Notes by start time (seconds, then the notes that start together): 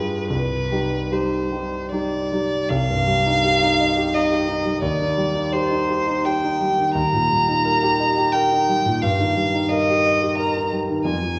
Already playing: G2 G3 F4 G#4 B4
0.30 C2 B4
0.71 G3 D#4 G4
1.11 G3 D#4 G4 C5
1.51 G3 D#4 G4
1.91 G3 D#4 G4 D5
2.32 G3 D#4 G4
2.69 C2 F5
2.90 G2
3.07 G3
3.26 D#4
3.44 G4
3.62 D#4
3.80 D#5
3.97 G4
4.14 D#4 D#5
4.30 G4
4.48 D#4
4.65 G3
4.82 D#2 D5
5.00 D#3
5.17 G3
5.34 D#4
5.53 G4 C5
5.71 D#4
5.89 G4
6.07 D#4
6.25 G4 G5
6.43 D#4
6.61 G3
6.78 D#3
6.94 D#2 A#5
7.13 A#2
7.30 G3
7.48 D#4
7.65 A#4
7.83 G4
8.00 D#5
8.18 G4
8.33 A#4 G5
8.51 D#4
8.68 G3
8.86 A#2
9.02 G2 F5
9.20 D#3
9.37 G3
9.54 D#4
9.69 A#4 D#5
9.90 G4
10.06 D#5
10.22 G4
10.38 A#4 A#5
10.56 D#4
10.72 G3
10.90 D#3
11.05 F2 G#5
11.23 F3